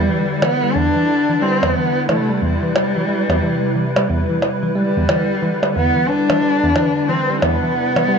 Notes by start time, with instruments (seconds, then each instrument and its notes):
Already playing: analog synth pad D3 G3 E4 B4, cello G3
0.09 tine electric piano E3
0.42 tine electric piano E3, cello B3, percussion blips
0.63 tine electric piano G3
0.76 tine electric piano E2, cello D4
0.96 tine electric piano E3
1.30 tine electric piano E3
1.42 tine electric piano G3, cello C4
1.63 tine electric piano E2, percussion blips
1.76 tine electric piano E3, cello B3
2.09 analog synth pad C3, tine electric piano E3, cello A3, percussion blips
2.29 tine electric piano G3
2.37 cello A3
2.42 tine electric piano E2, cello G3
2.63 tine electric piano E3
2.76 percussion blips
2.96 tine electric piano E3
3.09 tine electric piano G3
3.29 tine electric piano E2, percussion blips
3.42 tine electric piano E3
3.75 tine electric piano E3
3.96 tine electric piano G3, percussion blips
4.09 tine electric piano E2
4.30 tine electric piano E3
4.42 percussion blips
4.63 tine electric piano E3
4.76 analog synth pad D3 G3, tine electric piano G3, cello G3
4.96 tine electric piano E2
5.09 tine electric piano E3, percussion blips
5.42 tine electric piano E3
5.63 tine electric piano G3, percussion blips
5.75 tine electric piano E2, cello B3
5.96 tine electric piano E3
6.09 cello D4
6.30 tine electric piano E3, percussion blips
6.42 tine electric piano G3
6.63 tine electric piano E2
6.76 tine electric piano E3, percussion blips
7.09 tine electric piano E3, cello C4
7.30 tine electric piano G3
7.42 tine electric piano E2, analog synth pad C3 E4, cello B3, percussion blips
7.63 tine electric piano E3
7.96 tine electric piano E3, percussion blips
8.09 tine electric piano G3